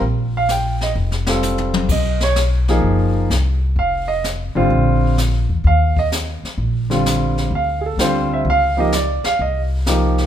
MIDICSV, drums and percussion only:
0, 0, Header, 1, 2, 480
1, 0, Start_track
1, 0, Tempo, 468384
1, 19, Time_signature, 4, 2, 24, 8
1, 10518, End_track
2, 0, Start_track
2, 0, Title_t, "Drums"
2, 13, Note_on_c, 9, 25, 42
2, 499, Note_on_c, 9, 38, 47
2, 501, Note_on_c, 9, 44, 48
2, 602, Note_off_c, 9, 38, 0
2, 604, Note_off_c, 9, 44, 0
2, 830, Note_on_c, 9, 38, 33
2, 932, Note_off_c, 9, 38, 0
2, 1144, Note_on_c, 9, 38, 43
2, 1246, Note_off_c, 9, 38, 0
2, 1297, Note_on_c, 9, 38, 66
2, 1400, Note_off_c, 9, 38, 0
2, 1463, Note_on_c, 9, 43, 54
2, 1465, Note_on_c, 9, 44, 56
2, 1566, Note_off_c, 9, 43, 0
2, 1568, Note_off_c, 9, 44, 0
2, 1619, Note_on_c, 9, 43, 57
2, 1721, Note_off_c, 9, 43, 0
2, 1781, Note_on_c, 9, 47, 71
2, 1884, Note_off_c, 9, 47, 0
2, 1937, Note_off_c, 9, 25, 0
2, 1937, Note_on_c, 9, 25, 37
2, 1937, Note_on_c, 9, 36, 64
2, 1937, Note_on_c, 9, 49, 68
2, 2039, Note_off_c, 9, 36, 0
2, 2039, Note_off_c, 9, 49, 0
2, 2259, Note_on_c, 9, 38, 49
2, 2362, Note_off_c, 9, 38, 0
2, 2418, Note_on_c, 9, 38, 54
2, 2420, Note_on_c, 9, 44, 43
2, 2520, Note_off_c, 9, 38, 0
2, 2522, Note_off_c, 9, 44, 0
2, 2748, Note_on_c, 9, 38, 36
2, 2851, Note_off_c, 9, 38, 0
2, 2903, Note_off_c, 9, 25, 0
2, 2903, Note_on_c, 9, 25, 42
2, 3386, Note_on_c, 9, 38, 54
2, 3388, Note_on_c, 9, 44, 45
2, 3488, Note_off_c, 9, 38, 0
2, 3490, Note_off_c, 9, 44, 0
2, 3871, Note_off_c, 9, 25, 0
2, 3871, Note_on_c, 9, 25, 43
2, 4347, Note_on_c, 9, 38, 51
2, 4349, Note_on_c, 9, 44, 47
2, 4449, Note_off_c, 9, 38, 0
2, 4452, Note_off_c, 9, 44, 0
2, 4833, Note_off_c, 9, 25, 0
2, 4833, Note_on_c, 9, 25, 55
2, 5308, Note_on_c, 9, 38, 51
2, 5311, Note_on_c, 9, 44, 58
2, 5411, Note_off_c, 9, 38, 0
2, 5413, Note_off_c, 9, 44, 0
2, 5784, Note_off_c, 9, 25, 0
2, 5784, Note_on_c, 9, 25, 40
2, 6114, Note_on_c, 9, 36, 45
2, 6216, Note_off_c, 9, 36, 0
2, 6272, Note_on_c, 9, 38, 55
2, 6274, Note_on_c, 9, 44, 58
2, 6374, Note_off_c, 9, 38, 0
2, 6376, Note_off_c, 9, 44, 0
2, 6608, Note_on_c, 9, 38, 39
2, 6710, Note_off_c, 9, 38, 0
2, 6754, Note_off_c, 9, 25, 0
2, 6754, Note_on_c, 9, 25, 54
2, 7079, Note_on_c, 9, 38, 38
2, 7181, Note_off_c, 9, 38, 0
2, 7236, Note_on_c, 9, 38, 59
2, 7238, Note_on_c, 9, 44, 58
2, 7338, Note_off_c, 9, 38, 0
2, 7341, Note_off_c, 9, 44, 0
2, 7558, Note_on_c, 9, 38, 33
2, 7661, Note_off_c, 9, 38, 0
2, 7716, Note_off_c, 9, 25, 0
2, 7716, Note_on_c, 9, 25, 41
2, 8187, Note_on_c, 9, 38, 53
2, 8189, Note_on_c, 9, 44, 44
2, 8290, Note_off_c, 9, 38, 0
2, 8292, Note_off_c, 9, 44, 0
2, 8668, Note_off_c, 9, 25, 0
2, 8668, Note_on_c, 9, 25, 43
2, 9146, Note_on_c, 9, 38, 62
2, 9148, Note_on_c, 9, 44, 46
2, 9248, Note_off_c, 9, 38, 0
2, 9250, Note_off_c, 9, 44, 0
2, 9472, Note_on_c, 9, 38, 49
2, 9574, Note_off_c, 9, 38, 0
2, 9621, Note_off_c, 9, 25, 0
2, 9621, Note_on_c, 9, 25, 47
2, 10107, Note_on_c, 9, 38, 53
2, 10109, Note_on_c, 9, 44, 52
2, 10209, Note_off_c, 9, 38, 0
2, 10211, Note_off_c, 9, 44, 0
2, 10433, Note_on_c, 9, 38, 36
2, 10518, Note_off_c, 9, 25, 0
2, 10518, Note_off_c, 9, 38, 0
2, 10518, End_track
0, 0, End_of_file